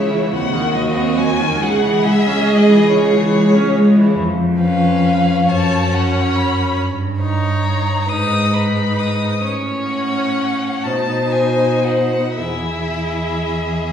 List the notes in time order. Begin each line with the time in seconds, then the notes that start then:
Already playing: C#2 C#3 E4 C#5
0.11 E3
0.32 D#2 C3 F#4 F#5
0.53 D#3
0.74 F#3 D#5
0.95 C4
1.17 F#3 G#5
1.39 D#3
1.61 C#2 C#3 G#4 F#5
1.82 E3
2.04 G#3 E5
2.27 C#4
2.48 G#3 D#5
2.69 E3
2.90 C#3 C#5
3.13 E3
3.34 G#3
3.56 C#4
3.76 G#3
3.97 E3
4.19 F2
4.61 C#4 B4 F5
5.47 F#2 C#4 C#5 A5
5.91 C#4 C#5 F#5
6.36 B5
6.77 G2
7.21 D#4 C#5 A#5
8.08 G#2 D#4 B4 D#6
8.54 D#4 B4 B5
8.99 D#6
9.44 A2 C#4 C#5
9.88 F#5
10.84 B2 D#4 C5 A5
11.32 G#5
11.84 F#5
12.36 E2 E4 G#4 E5